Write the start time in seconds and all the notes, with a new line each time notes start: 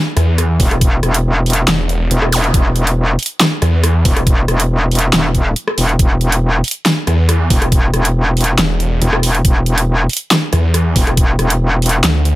0.17 E2, cross-stick, closed hi-hat
0.38 cross-stick, closed hi-hat
0.60 E1, kick, open hi-hat
0.71 cross-stick, closed hi-hat
0.81 kick, closed hi-hat
1.03 E1, cross-stick, closed hi-hat
1.14 closed hi-hat
1.46 closed hi-hat, open hi-hat
1.53 closed hi-hat
1.68 E1, snare, clap, closed hi-hat
1.89 closed hi-hat
2.11 E1, closed hi-hat
2.22 cross-stick
2.32 open hi-hat, zap
2.44 closed hi-hat
2.54 E1, kick, closed hi-hat
2.76 closed hi-hat
2.87 closed hi-hat
3.19 closed hi-hat, open hi-hat
3.26 closed hi-hat
3.40 snare, clap, closed hi-hat
3.62 E2, cross-stick, closed hi-hat
3.84 cross-stick, closed hi-hat
4.05 E1, kick, open hi-hat
4.17 cross-stick, closed hi-hat
4.27 kick, closed hi-hat
4.48 E1, cross-stick, closed hi-hat
4.60 closed hi-hat
4.91 closed hi-hat, open hi-hat
4.99 closed hi-hat
5.13 E1, snare, clap, closed hi-hat
5.35 kick, closed hi-hat
5.56 closed hi-hat
5.68 cross-stick
5.78 E1, open hi-hat
5.89 closed hi-hat
5.99 E1, kick, closed hi-hat
6.21 closed hi-hat
6.32 closed hi-hat
6.64 closed hi-hat, open hi-hat
6.71 closed hi-hat
6.86 snare, clap, closed hi-hat
7.07 E2, cross-stick, closed hi-hat
7.29 cross-stick, closed hi-hat
7.50 E1, kick, open hi-hat
7.62 cross-stick, closed hi-hat
7.72 kick, closed hi-hat
7.94 E1, cross-stick, closed hi-hat
8.05 closed hi-hat
8.37 closed hi-hat, open hi-hat
8.44 closed hi-hat
8.58 E1, snare, clap, closed hi-hat
8.80 closed hi-hat
9.02 E1, closed hi-hat
9.13 cross-stick
9.23 open hi-hat
9.35 closed hi-hat
9.45 E1, kick, closed hi-hat
9.66 closed hi-hat
9.78 closed hi-hat
10.09 closed hi-hat, open hi-hat
10.17 closed hi-hat
10.31 snare, clap, closed hi-hat
10.53 E2, cross-stick, closed hi-hat
10.74 cross-stick, closed hi-hat
10.96 E1, kick, open hi-hat
11.07 cross-stick, closed hi-hat
11.17 kick, closed hi-hat
11.39 E1, cross-stick, closed hi-hat
11.50 closed hi-hat
11.82 closed hi-hat, open hi-hat
11.89 closed hi-hat
12.04 D2, snare, clap, closed hi-hat
12.25 closed hi-hat